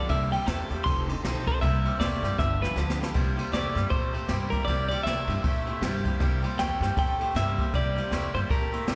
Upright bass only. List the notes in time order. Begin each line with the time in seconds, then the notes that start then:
0.09 C2
0.47 E2
0.70 E2
0.86 F1
1.23 B1
1.62 C2
1.99 E2
2.22 G2
2.38 G1
2.76 D2
3.15 C2
3.52 E2
3.75 G2
3.91 A#2
4.29 G2
4.67 C2
5.05 E2
5.28 G2
5.44 A#2
5.81 G2
6.20 C2
6.58 E2
6.80 G2
6.97 A#2
7.35 G2
7.74 C2
8.11 E2
8.34 G2
8.50 A#2
8.87 E2